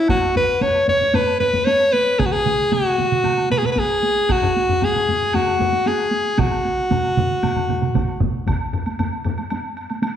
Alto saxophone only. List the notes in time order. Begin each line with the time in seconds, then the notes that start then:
0.10 F#4
0.37 B4
0.62 C#5
0.89 C#5
1.15 B4
1.40 B4
1.65 C#5
1.93 B4
2.19 G#4
2.26 F#4
2.32 G#4
2.73 F#4
3.51 B4
3.58 G#4
3.66 B4
3.72 B4
3.79 G#4
4.31 F#4
4.84 G#4
5.35 F#4
5.87 G#4
6.39 F#4